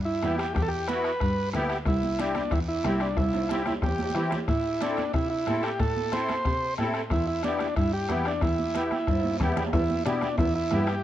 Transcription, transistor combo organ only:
0, 0, Header, 1, 2, 480
1, 0, Start_track
1, 0, Key_signature, 1, "minor"
1, 0, Tempo, 327690
1, 814, Time_signature, 4, 2, 24, 8
1, 16164, End_track
2, 0, Start_track
2, 0, Title_t, "Transistor combo organ"
2, 0, Program_c, 0, 18
2, 75, Note_on_c, 0, 64, 79
2, 531, Note_off_c, 0, 64, 0
2, 561, Note_on_c, 0, 67, 78
2, 778, Note_off_c, 0, 67, 0
2, 796, Note_on_c, 0, 67, 79
2, 912, Note_off_c, 0, 67, 0
2, 914, Note_on_c, 0, 69, 69
2, 1000, Note_on_c, 0, 67, 103
2, 1019, Note_off_c, 0, 69, 0
2, 1288, Note_on_c, 0, 71, 83
2, 1292, Note_off_c, 0, 67, 0
2, 2191, Note_off_c, 0, 71, 0
2, 2750, Note_on_c, 0, 64, 76
2, 3223, Note_on_c, 0, 62, 65
2, 3235, Note_off_c, 0, 64, 0
2, 3693, Note_on_c, 0, 64, 74
2, 3711, Note_off_c, 0, 62, 0
2, 3801, Note_off_c, 0, 64, 0
2, 3933, Note_on_c, 0, 64, 74
2, 4415, Note_on_c, 0, 62, 64
2, 4426, Note_off_c, 0, 64, 0
2, 4636, Note_off_c, 0, 62, 0
2, 4638, Note_on_c, 0, 64, 75
2, 5314, Note_off_c, 0, 64, 0
2, 5379, Note_on_c, 0, 64, 73
2, 5485, Note_off_c, 0, 64, 0
2, 5615, Note_on_c, 0, 67, 79
2, 6283, Note_off_c, 0, 67, 0
2, 6564, Note_on_c, 0, 64, 80
2, 7059, Note_on_c, 0, 62, 73
2, 7063, Note_off_c, 0, 64, 0
2, 7502, Note_off_c, 0, 62, 0
2, 7528, Note_on_c, 0, 64, 73
2, 7741, Note_off_c, 0, 64, 0
2, 7759, Note_on_c, 0, 64, 81
2, 8246, Note_on_c, 0, 67, 71
2, 8260, Note_off_c, 0, 64, 0
2, 8487, Note_on_c, 0, 69, 88
2, 8497, Note_off_c, 0, 67, 0
2, 8972, Note_on_c, 0, 72, 78
2, 8985, Note_off_c, 0, 69, 0
2, 9875, Note_off_c, 0, 72, 0
2, 10431, Note_on_c, 0, 64, 78
2, 10639, Note_off_c, 0, 64, 0
2, 10656, Note_on_c, 0, 64, 73
2, 10879, Note_off_c, 0, 64, 0
2, 10905, Note_on_c, 0, 62, 73
2, 11347, Note_off_c, 0, 62, 0
2, 11380, Note_on_c, 0, 64, 73
2, 11601, Note_off_c, 0, 64, 0
2, 11622, Note_on_c, 0, 67, 84
2, 12111, Note_on_c, 0, 62, 73
2, 12113, Note_off_c, 0, 67, 0
2, 12327, Note_off_c, 0, 62, 0
2, 12347, Note_on_c, 0, 64, 76
2, 13724, Note_off_c, 0, 64, 0
2, 14253, Note_on_c, 0, 64, 83
2, 14701, Note_off_c, 0, 64, 0
2, 14728, Note_on_c, 0, 62, 70
2, 15179, Note_off_c, 0, 62, 0
2, 15220, Note_on_c, 0, 64, 77
2, 15440, Note_off_c, 0, 64, 0
2, 15457, Note_on_c, 0, 64, 83
2, 15940, Note_on_c, 0, 67, 83
2, 15951, Note_off_c, 0, 64, 0
2, 16155, Note_off_c, 0, 67, 0
2, 16164, End_track
0, 0, End_of_file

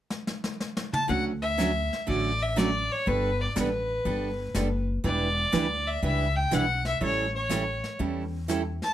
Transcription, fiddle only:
0, 0, Header, 1, 2, 480
1, 0, Start_track
1, 0, Key_signature, 2, "major"
1, 0, Tempo, 493827
1, 1059, Time_signature, 4, 2, 24, 8
1, 8686, End_track
2, 0, Start_track
2, 0, Title_t, "Fiddle"
2, 0, Program_c, 0, 110
2, 906, Note_on_c, 0, 81, 95
2, 1052, Note_off_c, 0, 81, 0
2, 1058, Note_on_c, 0, 78, 92
2, 1203, Note_off_c, 0, 78, 0
2, 1380, Note_on_c, 0, 76, 95
2, 1981, Note_off_c, 0, 76, 0
2, 2027, Note_on_c, 0, 74, 93
2, 2352, Note_on_c, 0, 76, 85
2, 2367, Note_off_c, 0, 74, 0
2, 2506, Note_on_c, 0, 74, 89
2, 2520, Note_off_c, 0, 76, 0
2, 2836, Note_on_c, 0, 73, 85
2, 2850, Note_off_c, 0, 74, 0
2, 2989, Note_on_c, 0, 71, 97
2, 3004, Note_off_c, 0, 73, 0
2, 3315, Note_on_c, 0, 74, 80
2, 3330, Note_off_c, 0, 71, 0
2, 3468, Note_off_c, 0, 74, 0
2, 3485, Note_on_c, 0, 71, 78
2, 4714, Note_off_c, 0, 71, 0
2, 4905, Note_on_c, 0, 74, 99
2, 5705, Note_on_c, 0, 76, 85
2, 5720, Note_off_c, 0, 74, 0
2, 5862, Note_off_c, 0, 76, 0
2, 5866, Note_on_c, 0, 76, 93
2, 6184, Note_on_c, 0, 79, 90
2, 6199, Note_off_c, 0, 76, 0
2, 6355, Note_on_c, 0, 78, 96
2, 6369, Note_off_c, 0, 79, 0
2, 6667, Note_off_c, 0, 78, 0
2, 6675, Note_on_c, 0, 76, 91
2, 6815, Note_off_c, 0, 76, 0
2, 6829, Note_on_c, 0, 73, 88
2, 7122, Note_off_c, 0, 73, 0
2, 7148, Note_on_c, 0, 73, 75
2, 7744, Note_off_c, 0, 73, 0
2, 8588, Note_on_c, 0, 81, 95
2, 8686, Note_off_c, 0, 81, 0
2, 8686, End_track
0, 0, End_of_file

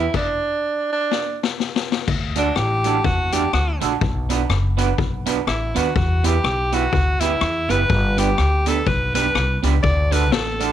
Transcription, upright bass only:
0, 0, Header, 1, 2, 480
1, 0, Start_track
1, 0, Key_signature, 2, "major"
1, 0, Tempo, 485044
1, 134, Time_signature, 4, 2, 24, 8
1, 10611, End_track
2, 0, Start_track
2, 0, Title_t, "Upright bass"
2, 0, Program_c, 0, 32
2, 2057, Note_on_c, 0, 38, 94
2, 2464, Note_off_c, 0, 38, 0
2, 2539, Note_on_c, 0, 33, 98
2, 2946, Note_off_c, 0, 33, 0
2, 3015, Note_on_c, 0, 40, 107
2, 3423, Note_off_c, 0, 40, 0
2, 3494, Note_on_c, 0, 38, 98
2, 3734, Note_off_c, 0, 38, 0
2, 3777, Note_on_c, 0, 34, 88
2, 3946, Note_off_c, 0, 34, 0
2, 3972, Note_on_c, 0, 35, 103
2, 4382, Note_off_c, 0, 35, 0
2, 4449, Note_on_c, 0, 30, 98
2, 4860, Note_off_c, 0, 30, 0
2, 4934, Note_on_c, 0, 35, 96
2, 5343, Note_off_c, 0, 35, 0
2, 5414, Note_on_c, 0, 33, 93
2, 5653, Note_off_c, 0, 33, 0
2, 5697, Note_on_c, 0, 39, 96
2, 5866, Note_off_c, 0, 39, 0
2, 5899, Note_on_c, 0, 40, 104
2, 6306, Note_off_c, 0, 40, 0
2, 6372, Note_on_c, 0, 35, 94
2, 6782, Note_off_c, 0, 35, 0
2, 6857, Note_on_c, 0, 38, 106
2, 7265, Note_off_c, 0, 38, 0
2, 7334, Note_on_c, 0, 40, 103
2, 7574, Note_off_c, 0, 40, 0
2, 7608, Note_on_c, 0, 30, 96
2, 7781, Note_off_c, 0, 30, 0
2, 7815, Note_on_c, 0, 31, 102
2, 8223, Note_off_c, 0, 31, 0
2, 8298, Note_on_c, 0, 38, 99
2, 8705, Note_off_c, 0, 38, 0
2, 8778, Note_on_c, 0, 35, 112
2, 9185, Note_off_c, 0, 35, 0
2, 9253, Note_on_c, 0, 36, 92
2, 9493, Note_off_c, 0, 36, 0
2, 9531, Note_on_c, 0, 37, 90
2, 9703, Note_off_c, 0, 37, 0
2, 9734, Note_on_c, 0, 38, 99
2, 10200, Note_off_c, 0, 38, 0
2, 10200, Note_on_c, 0, 33, 105
2, 10611, Note_off_c, 0, 33, 0
2, 10611, End_track
0, 0, End_of_file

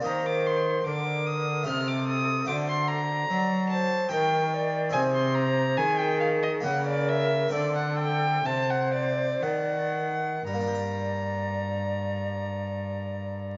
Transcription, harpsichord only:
0, 0, Header, 1, 2, 480
1, 0, Start_track
1, 0, Key_signature, -2, "minor"
1, 0, Tempo, 814111
1, 32, Time_signature, 3, 2, 24, 8
1, 2912, Tempo, 862069
1, 4352, Tempo, 923077
1, 4832, Tempo, 977199
1, 5312, Tempo, 1048951
1, 7209, End_track
2, 0, Start_track
2, 0, Title_t, "Harpsichord"
2, 0, Program_c, 0, 6
2, 4, Note_on_c, 0, 58, 56
2, 15, Note_on_c, 0, 67, 58
2, 23, Note_on_c, 0, 75, 56
2, 31, Note_on_c, 0, 51, 63
2, 480, Note_off_c, 0, 58, 0
2, 484, Note_off_c, 0, 51, 0
2, 508, Note_on_c, 0, 50, 62
2, 955, Note_off_c, 0, 67, 0
2, 959, Note_off_c, 0, 75, 0
2, 961, Note_on_c, 0, 57, 66
2, 963, Note_off_c, 0, 50, 0
2, 969, Note_on_c, 0, 67, 64
2, 978, Note_on_c, 0, 75, 66
2, 988, Note_on_c, 0, 48, 73
2, 1435, Note_off_c, 0, 57, 0
2, 1442, Note_on_c, 0, 57, 56
2, 1444, Note_off_c, 0, 67, 0
2, 1445, Note_off_c, 0, 48, 0
2, 1449, Note_off_c, 0, 75, 0
2, 1452, Note_on_c, 0, 66, 57
2, 1460, Note_on_c, 0, 72, 61
2, 1468, Note_on_c, 0, 50, 62
2, 1924, Note_off_c, 0, 50, 0
2, 1948, Note_on_c, 0, 54, 68
2, 2393, Note_off_c, 0, 57, 0
2, 2398, Note_off_c, 0, 66, 0
2, 2402, Note_off_c, 0, 72, 0
2, 2406, Note_off_c, 0, 54, 0
2, 2410, Note_on_c, 0, 67, 70
2, 2418, Note_on_c, 0, 70, 72
2, 2428, Note_on_c, 0, 51, 81
2, 2886, Note_on_c, 0, 60, 60
2, 2887, Note_off_c, 0, 67, 0
2, 2888, Note_off_c, 0, 51, 0
2, 2891, Note_off_c, 0, 70, 0
2, 2893, Note_on_c, 0, 63, 64
2, 2903, Note_on_c, 0, 68, 62
2, 2911, Note_on_c, 0, 48, 65
2, 3356, Note_off_c, 0, 48, 0
2, 3382, Note_on_c, 0, 51, 72
2, 3826, Note_off_c, 0, 60, 0
2, 3829, Note_off_c, 0, 63, 0
2, 3834, Note_off_c, 0, 68, 0
2, 3839, Note_on_c, 0, 58, 68
2, 3840, Note_off_c, 0, 51, 0
2, 3847, Note_on_c, 0, 61, 75
2, 3856, Note_on_c, 0, 67, 68
2, 3864, Note_on_c, 0, 49, 77
2, 4327, Note_off_c, 0, 58, 0
2, 4327, Note_on_c, 0, 57, 59
2, 4331, Note_off_c, 0, 61, 0
2, 4332, Note_off_c, 0, 49, 0
2, 4336, Note_off_c, 0, 67, 0
2, 4337, Note_on_c, 0, 60, 64
2, 4345, Note_on_c, 0, 69, 62
2, 4353, Note_on_c, 0, 50, 73
2, 4812, Note_off_c, 0, 50, 0
2, 4834, Note_on_c, 0, 48, 66
2, 5281, Note_off_c, 0, 57, 0
2, 5293, Note_off_c, 0, 48, 0
2, 5313, Note_on_c, 0, 51, 66
2, 5765, Note_off_c, 0, 60, 0
2, 5768, Note_off_c, 0, 69, 0
2, 5772, Note_off_c, 0, 51, 0
2, 5789, Note_on_c, 0, 55, 63
2, 5821, Note_on_c, 0, 58, 60
2, 5853, Note_on_c, 0, 62, 60
2, 5885, Note_on_c, 0, 67, 62
2, 5917, Note_on_c, 0, 74, 64
2, 7209, Note_off_c, 0, 55, 0
2, 7209, Note_off_c, 0, 58, 0
2, 7209, Note_off_c, 0, 62, 0
2, 7209, Note_off_c, 0, 67, 0
2, 7209, Note_off_c, 0, 74, 0
2, 7209, End_track
0, 0, End_of_file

